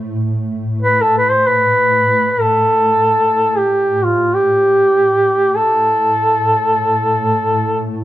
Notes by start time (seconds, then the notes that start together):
Already playing: A2
0.82 B4
1.01 A4
1.18 B4
1.31 C5
1.47 B4
2.31 B4
2.41 A4
3.57 G4
4.04 F4
4.34 G4
4.44 A2
5.55 A4